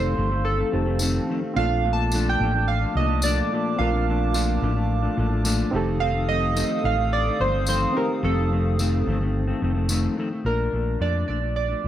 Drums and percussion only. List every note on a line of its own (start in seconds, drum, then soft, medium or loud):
0.99 tambourine medium
2.12 tambourine medium
3.22 tambourine medium
4.34 tambourine medium
5.45 tambourine medium
6.57 tambourine medium
7.67 tambourine medium
8.79 tambourine medium
9.89 tambourine medium